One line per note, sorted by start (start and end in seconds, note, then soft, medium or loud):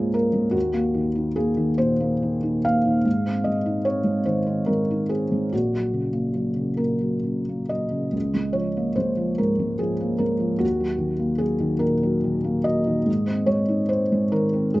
0.00 0.51 C#2 soft
0.00 0.57 G#2 soft
0.00 0.33 G#3 soft
0.00 0.14 A#3 soft
0.00 0.58 F4 soft
0.00 0.13 G#4 medium
0.00 0.14 A#4 medium
0.00 0.57 C5 medium
0.00 0.57 C#5 soft
0.14 0.46 A#3 soft
0.14 0.54 A#4 medium
0.33 0.54 G#3 soft
0.51 3.00 D#2 soft
0.51 1.34 F#4 medium
0.74 1.07 A#3 soft
0.94 1.28 D#3 soft
1.15 1.49 D#4 soft
1.36 1.70 A#3 soft
1.36 1.78 G#4 medium
1.57 1.91 D#3 soft
1.78 2.13 A#2 soft
1.78 2.64 C5 medium
2.00 2.35 A#3 soft
2.22 2.56 D#3 soft
2.43 2.77 D#4 soft
2.65 2.98 A#3 soft
2.65 3.46 F5 medium
2.85 3.06 D#3 soft
3.05 5.48 G#2 soft
3.26 3.58 C4 soft
3.44 3.77 G#3 soft
3.44 3.85 D#5 soft
3.66 3.97 D#4 soft
3.85 4.18 C4 soft
3.85 4.25 C#5 medium
4.04 4.37 G#3 soft
4.25 4.59 D#3 soft
4.25 4.67 C5 medium
4.46 4.80 C4 soft
4.66 5.01 G#3 soft
4.66 5.09 A#4 medium
4.90 5.23 D#4 soft
5.09 5.43 C4 soft
5.09 5.52 G#4 medium
5.32 5.52 G#3 soft
5.52 8.11 A#1 soft
5.52 6.81 F#4 medium
5.73 6.07 F#3 soft
5.94 6.28 C#3 soft
6.13 6.48 A#3 soft
6.34 6.70 F#3 soft
6.56 6.93 C#3 soft
6.77 7.16 A#2 soft
6.77 7.70 A#4 soft
7.01 7.39 F#3 soft
7.23 7.61 C#3 soft
7.49 7.85 A#3 soft
7.69 8.05 F#3 soft
7.69 8.55 D#5 soft
7.90 8.13 C#3 soft
8.13 10.57 C#2 soft
8.34 8.68 G#3 soft
8.53 8.88 F3 soft
8.53 8.96 C#5 soft
8.77 9.10 A#3 soft
8.96 9.31 G#3 soft
8.96 9.38 C5 medium
9.17 9.51 F3 soft
9.38 9.73 G#2 soft
9.38 9.80 A#4 medium
9.59 9.93 G#3 soft
9.79 10.13 F3 soft
9.79 10.21 G#4 medium
10.00 10.33 A#3 soft
10.18 10.53 G#3 soft
10.18 10.61 A#4 medium
10.39 10.61 F3 soft
10.59 13.02 D#2 soft
10.59 11.40 F#4 medium
10.80 11.13 F#3 soft
10.98 11.32 D#3 soft
11.19 11.53 A#3 soft
11.38 11.74 F#3 soft
11.38 11.81 G#4 medium
11.60 11.94 D#3 soft
11.79 12.15 A#2 soft
11.79 12.65 A#4 medium
12.03 12.37 F#3 soft
12.24 12.58 D#3 soft
12.44 12.78 A#3 soft
12.64 12.98 F#3 soft
12.64 13.47 D#5 medium
12.87 13.07 D#3 soft
13.06 14.80 G#2 soft
13.26 13.59 C4 soft
13.46 13.80 G#3 soft
13.46 13.88 C#5 medium
13.68 14.01 D#4 soft
13.89 14.22 C4 soft
13.89 14.30 C5 medium
14.12 14.44 G#3 soft
14.32 14.65 D#3 soft
14.32 14.73 A#4 medium
14.53 14.80 C4 soft
14.74 14.80 G#3 soft
14.74 14.80 G#4 medium